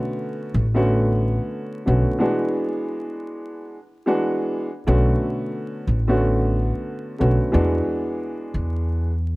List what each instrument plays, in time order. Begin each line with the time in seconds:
Already playing: upright piano D3 A3 B3 C#4 F#4
0.54 upright bass A1
0.74 upright piano D3 A3 B3 C#4 F#4
1.85 upright bass B1, upright piano D3 A3 B3 C#4 F#4
2.19 upright piano E3 G#3 B3 D4 F#4
4.06 upright piano E3 G#3 B3 D4 F#4
4.86 upright bass B1, upright piano D3 A3 B3 C#4 F#4
5.87 upright bass A1
6.08 upright piano D3 A3 B3 C#4 F#4
7.19 upright bass B1, upright piano D3 A3 B3 C#4 F#4
7.52 upright bass E2, upright piano E3 G#3 B3 D4 F#4
8.54 upright bass E2